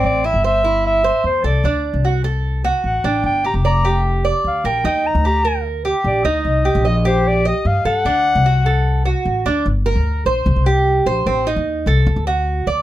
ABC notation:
X:1
M:4/4
L:1/16
Q:1/4=150
K:Dphr
V:1 name="Clarinet"
d2 =e2 e4 e4 c2 d2- | d2 z8 z2 ^f2 g2 | g2 b2 b4 z4 f2 g2 | g2 b2 b4 z4 d2 e2- |
e4 e2 c2 d2 e2 f2 ^f2- | ^f12 z4 | [K:Gm] z16 | z16 |]
V:2 name="Cuban tres"
C2 =E2 c2 E4 c4 A2 | D4 ^F2 A4 F4 D2- | D2 G2 d2 G4 d4 B2 | E4 G2 B4 G4 E2- |
E2 G2 e2 G4 e4 A2 | D4 ^F2 A4 F4 D2 | [K:Gm] z2 B4 c4 G4 c2 | C2 E4 A4 ^F4 d2 |]
V:3 name="Upright bass" clef=bass
A,,,3 G,,,8 z =E,,2 C,,2 | D,,3 C,,8 z A,,,2 A,,,2 | G,,,3 F,,,8 z D,,2 B,,,2 | E,,3 D,,8 z B,,,2 D,,2 |
C,,3 B,,,8 z G,,2 G,,2 | D,,3 C,,8 z A,,,2 D,,2 | [K:Gm] G,,,3 D,,3 B,,,2 C,, C,,4- C,, B,,,2 | A,,,3 E,,3 C,,2 D,, D,,4- D,, D,,2 |]